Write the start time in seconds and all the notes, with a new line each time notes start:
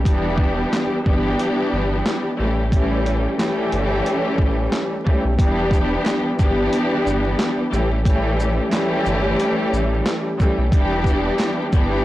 0.03 E1 E3 G3 B3 D4 G4, kick, closed hi-hat
0.38 kick
0.73 snare, clap, closed hi-hat
1.05 G1 E3 G3 B3 D4 G4, kick
1.39 closed hi-hat
1.73 G1
2.06 snare, clap, closed hi-hat
2.38 A1 E3 G3 A3 C#4 G4
2.70 E3 G3 A3 C#4 G4, kick, closed hi-hat
3.06 closed hi-hat
3.38 E3 G3 A3 C#4 G4, snare, clap, closed hi-hat
3.72 G1, closed hi-hat
4.06 closed hi-hat
4.38 A1, kick
4.72 snare, clap, closed hi-hat
5.04 E3 G3 A3 C#4 G4, kick
5.25 B1
5.36 E1 E3 G3 B3 D4 G4, kick, closed hi-hat
5.71 kick, shaker
6.05 finger snap, snare, clap, closed hi-hat
6.38 G1 E3 G3 B3 D4 G4, kick, shaker
6.73 closed hi-hat
7.06 G1, shaker
7.39 finger snap, snare, clap, closed hi-hat
7.71 A1 E3 G3 A3 C#4 G4, shaker
8.03 E3 G3 A3 C#4 G4, kick, closed hi-hat
8.40 shaker
8.71 E3 G3 A3 C#4 G4, finger snap, snare, clap, closed hi-hat
9.06 G1, shaker
9.40 closed hi-hat
9.73 A1, shaker
10.06 finger snap, snare, clap, closed hi-hat
10.38 E3 G3 A3 C#4 G4, kick, shaker
10.58 B1
10.70 E1 E3 G3 B3 D4 G4, kick, closed hi-hat
11.04 kick, shaker
11.38 finger snap, snare, clap, closed hi-hat
11.71 G1 E3 G3 B3 D4 G4, kick, shaker